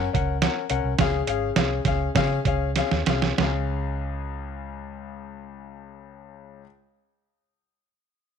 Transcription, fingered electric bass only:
0.14 0.46 C#2 medium
0.70 0.81 C2 medium
0.84 0.95 C2 medium
0.99 1.21 C#2 loud
1.27 1.49 G#1 medium
1.56 1.79 C2 medium
1.85 2.08 C#2 loud
2.15 2.38 C#3 loud
2.45 2.81 C#2 medium
2.92 3.03 D#2 medium
3.07 3.31 C2 medium
3.38 6.61 C#2 medium

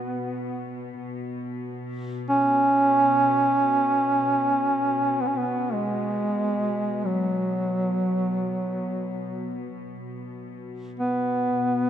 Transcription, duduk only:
0.00 0.96 B3 medium
2.29 5.22 C#4 medium
5.20 5.28 B3 medium
5.27 5.39 C#4 medium
5.37 5.75 B3 medium
5.73 7.07 G#3 medium
7.06 9.64 F#3 medium
11.00 11.90 B3 medium

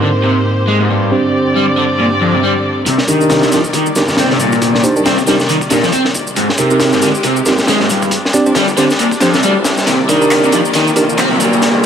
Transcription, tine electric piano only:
0.00 1.09 G#2 medium
0.00 1.09 C4 medium
0.00 1.09 D#4 medium
0.00 1.09 G4 medium
0.00 1.09 A#4 medium
1.11 2.84 C4 medium
1.11 2.85 D4 medium
1.11 2.85 G4 medium
1.11 2.84 C5 medium
3.08 3.19 D4 medium
3.08 3.19 D#4 medium
3.08 3.19 G4 medium
3.08 3.19 A#4 medium
3.21 3.50 D4 medium
3.21 3.50 D#4 medium
3.21 3.50 G4 medium
3.21 3.50 A#4 medium
3.52 3.59 D4 medium
3.52 3.59 D#4 medium
3.52 3.59 G4 medium
3.52 3.59 A#4 medium
3.96 4.03 D4 medium
3.96 4.03 D#4 medium
3.96 4.03 G4 medium
3.96 4.03 A#4 medium
4.83 4.94 D4 loud
4.83 4.94 D#4 medium
4.83 4.94 G4 medium
4.83 4.94 C5 loud
4.96 5.01 D4 medium
4.96 5.01 D#4 medium
4.96 5.01 G4 medium
4.96 5.01 A#4 medium
5.27 5.39 D4 medium
5.27 5.39 D#4 medium
5.27 5.39 G4 medium
5.27 5.39 A#4 loud
5.71 5.78 D4 medium
5.71 5.78 D#4 medium
5.71 5.78 G4 medium
5.71 5.78 A#4 loud
6.58 6.69 C4 medium
6.58 6.69 D#4 medium
6.58 6.69 G4 medium
6.58 6.69 A#4 medium
6.71 7.00 C4 medium
6.71 7.00 D#4 medium
6.71 7.00 G4 medium
6.71 7.00 A#4 medium
7.02 7.10 C4 medium
7.02 7.10 D#4 medium
7.02 7.10 G4 medium
7.02 7.09 A#4 medium
7.46 7.53 C4 medium
7.46 7.53 D#4 medium
7.46 7.53 G4 medium
7.46 7.53 A#4 loud
8.34 8.45 C4 loud
8.34 8.45 D4 medium
8.34 8.45 G4 medium
8.34 8.45 D5 loud
8.46 8.52 C4 medium
8.46 8.52 D4 medium
8.46 8.52 G4 medium
8.46 8.52 C5 medium
8.77 8.89 C4 medium
8.77 8.89 D4 medium
8.77 8.89 G4 medium
8.77 8.89 C5 loud
9.21 9.29 C4 medium
9.21 9.29 D4 medium
9.21 9.29 G4 medium
9.21 9.29 C5 loud
10.09 10.20 D4 medium
10.09 10.20 D#4 medium
10.09 10.20 G4 medium
10.09 10.20 A#4 medium
10.21 10.51 D4 medium
10.21 10.50 D#4 medium
10.21 10.51 G4 medium
10.21 10.51 A#4 medium
10.53 10.60 D4 medium
10.53 10.60 D#4 medium
10.53 10.60 G4 medium
10.53 10.60 A#4 medium
10.96 11.04 D4 medium
10.96 11.04 D#4 medium
10.96 11.04 G4 medium
10.96 11.04 A#4 loud

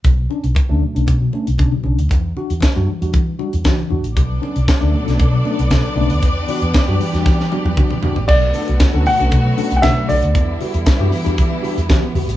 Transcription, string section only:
4.16 6.20 F#3 medium
4.16 8.24 B3 medium
4.16 8.25 D4 medium
4.16 6.20 A4 medium
4.16 8.24 D5 medium
6.22 8.26 E3 medium
6.22 8.27 G4 medium
8.28 12.37 D3 medium
8.28 10.33 F#3 medium
8.28 10.32 A3 medium
8.28 10.33 B3 medium
8.28 10.32 F#4 medium
10.34 12.37 E3 medium
10.34 12.37 G3 medium
10.34 12.37 B3 medium
10.34 12.37 E4 medium

